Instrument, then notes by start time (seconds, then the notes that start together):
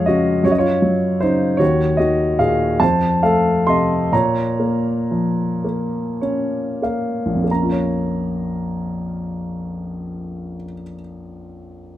grand piano
Already playing: F2 G#3 F4 G#4 C#5 F5
0.05 C#3 F#4 D#5
0.44 F#2 F#4 C#5
0.51 D#5
0.58 F4 C#5
0.82 F#3
1.21 C#3 D#4 C5
1.57 D#2 F#4 C#5
1.97 D#3 F#4 D#5
2.39 A#2 G#4 F5
2.80 F2 C5 A5
3.23 A3 A4 F5
3.67 C3 D#5 C6
4.12 A#2 C#5 A#5
4.59 A#3
5.11 F3
5.64 A#3
6.21 C#4 C#5
6.82 A#3 F5
7.26 A#1
7.35 F2
7.44 A#3
7.51 C#4 A#5
7.63 F4
7.72 C#5